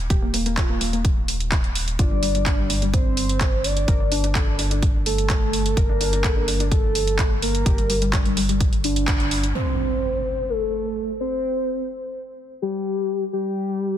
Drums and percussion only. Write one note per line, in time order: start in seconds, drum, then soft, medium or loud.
0.10 kick loud
0.10 closed hi-hat medium
0.34 open hi-hat loud
0.46 closed hi-hat soft
0.57 kick loud
0.57 clap loud
0.57 closed hi-hat medium
0.81 open hi-hat loud
0.93 closed hi-hat soft
1.05 kick loud
1.05 closed hi-hat medium
1.28 open hi-hat loud
1.40 closed hi-hat soft
1.52 kick loud
1.52 clap loud
1.52 closed hi-hat medium
1.64 closed hi-hat soft
1.75 open hi-hat loud
1.88 closed hi-hat medium
1.99 kick loud
1.99 closed hi-hat medium
2.23 open hi-hat loud
2.35 closed hi-hat soft
2.46 kick loud
2.46 clap loud
2.46 closed hi-hat medium
2.70 open hi-hat loud
2.82 closed hi-hat soft
2.94 kick loud
2.94 closed hi-hat medium
3.17 open hi-hat loud
3.29 closed hi-hat soft
3.41 kick loud
3.41 clap loud
3.41 closed hi-hat medium
3.64 open hi-hat loud
3.77 closed hi-hat soft
3.88 kick loud
3.88 closed hi-hat medium
4.12 open hi-hat loud
4.24 closed hi-hat soft
4.35 kick loud
4.35 clap loud
4.35 closed hi-hat medium
4.59 open hi-hat loud
4.71 closed hi-hat medium
4.83 kick loud
4.83 closed hi-hat medium
5.06 open hi-hat loud
5.18 closed hi-hat medium
5.30 kick loud
5.30 clap loud
5.30 closed hi-hat medium
5.53 open hi-hat medium
5.66 closed hi-hat medium
5.77 kick loud
5.77 closed hi-hat medium
6.01 open hi-hat medium
6.13 closed hi-hat soft
6.24 kick medium
6.24 clap loud
6.24 closed hi-hat medium
6.48 open hi-hat loud
6.60 closed hi-hat medium
6.71 kick loud
6.71 closed hi-hat medium
6.95 open hi-hat loud
7.07 closed hi-hat medium
7.19 kick medium
7.19 clap loud
7.19 closed hi-hat medium
7.42 open hi-hat loud
7.55 closed hi-hat medium
7.66 kick loud
7.66 closed hi-hat medium
7.78 closed hi-hat soft
7.90 open hi-hat loud
8.02 closed hi-hat medium
8.13 kick loud
8.13 clap loud
8.13 closed hi-hat medium
8.26 closed hi-hat soft
8.37 open hi-hat loud
8.49 closed hi-hat medium
8.61 kick loud
8.61 closed hi-hat medium
8.73 closed hi-hat soft
8.84 open hi-hat loud
8.96 closed hi-hat medium
9.08 kick loud
9.08 clap loud
9.08 closed hi-hat medium
9.20 closed hi-hat soft
9.31 open hi-hat loud
9.43 closed hi-hat medium